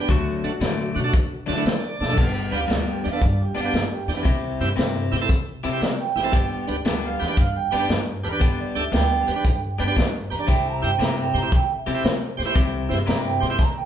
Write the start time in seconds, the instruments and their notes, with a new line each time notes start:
0.00 tonewheel organ D4 G4
0.08 upright bass D2, clean electric guitar D3 F#3 A3 D4, lead electric guitar F#4, kick, closed hi-hat
0.43 upright bass A2, tonewheel organ A3 D4 F#4, closed hi-hat
0.61 upright bass A2, clean electric guitar D3 F#3 A3 D4, snare, closed hi-hat
0.95 upright bass B2, tonewheel organ D4 F#4, closed hi-hat
1.04 tonewheel organ A3 D4 F#4
1.13 upright bass D3, kick, closed hi-hat
1.46 clean electric guitar D3 F#3 A3 D4, upright bass D3, tonewheel organ D4 F#4 A5, closed hi-hat
1.50 snare
1.57 tonewheel organ A3 D4 E4 F#5
1.65 upright bass D3, tonewheel organ D5, snare, closed hi-hat
2.00 upright bass B2, tonewheel organ D4 A4, snare
2.09 tonewheel organ A3 D4 A4, floor tom
2.15 upright bass G1, clean electric guitar G2 G3 B3 D4, kick, crash
2.51 upright bass D2, tonewheel organ B3 D4 G4, clean electric guitar F5, closed hi-hat
2.68 upright bass D2, clean electric guitar G2 G3 B3 D4 D5, snare, closed hi-hat
2.87 clean electric guitar G4
3.04 upright bass E2, tonewheel organ D4 G4, clean electric guitar F5, closed hi-hat
3.12 tonewheel organ B3 D4 A4
3.22 upright bass G2, clean electric guitar D5, kick, closed hi-hat
3.41 clean electric guitar G4
3.55 clean electric guitar G2 G3 B3 D4, upright bass G2, tonewheel organ D4 G4, closed hi-hat
3.59 clean electric guitar F5
3.65 tonewheel organ B3 D4 G4
3.73 upright bass G2, clean electric guitar D5, snare, closed hi-hat
3.92 clean electric guitar G4
4.07 upright bass E2, tonewheel organ D4 G4, clean electric guitar E4, snare, closed hi-hat
4.17 tonewheel organ B3 D4 G4
4.23 upright bass C2, clean electric guitar C3 C4 E4 G4, kick, closed hi-hat
4.60 upright bass G2, tonewheel organ C4 E4 G4, snare, closed hi-hat
4.76 upright bass G2, clean electric guitar C3 C4 E4 G4, snare, closed hi-hat
5.12 upright bass A2, tonewheel organ E4 G4, snare, closed hi-hat
5.21 tonewheel organ C4 E4 A4
5.29 upright bass C3, kick, closed hi-hat
5.63 clean electric guitar C3 C4 E4 G4, upright bass C3, tonewheel organ E4 A4, closed hi-hat
5.72 tonewheel organ C4 E4 G4
5.81 upright bass C3, clean electric guitar D5, snare, closed hi-hat
6.00 clean electric guitar G5
6.16 upright bass A1, tonewheel organ E4 G4, snare, closed hi-hat
6.24 tonewheel organ C4 E4 A4
6.32 upright bass G1, clean electric guitar G3 B3 D4 G4, kick, closed hi-hat
6.67 upright bass D2, tonewheel organ D4 G4 B4, closed hi-hat
6.85 upright bass D2, clean electric guitar G3 B3 D4 G4, snare, closed hi-hat
7.05 clean electric guitar F5
7.19 upright bass E2, tonewheel organ G4 B4, snare, closed hi-hat
7.25 tonewheel organ D4 G4 B4, clean electric guitar G5
7.37 upright bass G2, clean electric guitar F5, kick, closed hi-hat
7.56 clean electric guitar G5
7.71 upright bass G2, clean electric guitar G3 B3 D4 G4, tonewheel organ G4 B4, closed hi-hat
7.79 tonewheel organ D4 G4 B4
7.89 upright bass G2, snare, closed hi-hat
8.23 upright bass E2, tonewheel organ G4 B4, clean electric guitar B4, closed hi-hat
8.32 tonewheel organ D4 G4 B4
8.40 upright bass G1, clean electric guitar G3 B3 D4 G4, kick, closed hi-hat
8.60 clean electric guitar D5
8.75 upright bass D2, tonewheel organ D4 G4 A4, clean electric guitar E5, closed hi-hat
8.92 upright bass D2, clean electric guitar G3 B3 D4 G4 G5, snare, closed hi-hat
9.27 upright bass E2, tonewheel organ G4 B4, closed hi-hat
9.36 tonewheel organ D4 G4 B4
9.44 upright bass G2, kick, closed hi-hat
9.79 upright bass G2, clean electric guitar G3 B3 D4 G4, tonewheel organ G4 B4, closed hi-hat
9.87 tonewheel organ D4 G4 B4
9.97 upright bass G2, kick, snare, closed hi-hat
10.30 upright bass E2, tonewheel organ G4 B4, clean electric guitar A#5, closed hi-hat
10.39 tonewheel organ D4 G4 D5
10.47 upright bass C2, clean electric guitar C3 C4 E4 G4 G5, kick, closed hi-hat
10.66 clean electric guitar A#5
10.82 upright bass G2, tonewheel organ E4 G4 C5, clean electric guitar G5, closed hi-hat
10.99 upright bass G2, clean electric guitar C3 C4 E4 G4 A#5, snare, closed hi-hat
11.21 clean electric guitar G5
11.34 upright bass A2, tonewheel organ G4 C5, clean electric guitar A#5, closed hi-hat
11.42 tonewheel organ E4 G4 C5
11.52 upright bass C3, clean electric guitar G5, kick, closed hi-hat
11.72 clean electric guitar E5
11.86 upright bass C3, clean electric guitar C3 C4 E4 G4, tonewheel organ G4 A4, closed hi-hat
11.95 tonewheel organ E4 G4 C5
12.04 upright bass C3, snare, closed hi-hat
12.37 upright bass A2, tonewheel organ G4 C5, snare, closed hi-hat
12.45 tonewheel organ E4 G4 C5
12.55 upright bass C2, clean electric guitar C3 C4 E4 G4, kick, closed hi-hat
12.89 upright bass G2, tonewheel organ E4 G4 C5, snare, closed hi-hat
13.06 upright bass G2, clean electric guitar C3 C4 E4 G4 A#5, snare, closed hi-hat
13.26 clean electric guitar G5
13.40 upright bass A2, tonewheel organ G4 C5, clean electric guitar C6, snare, closed hi-hat
13.50 tonewheel organ E4 G4 C5
13.58 upright bass C3, clean electric guitar A#5, kick, snare, closed hi-hat
13.77 clean electric guitar G5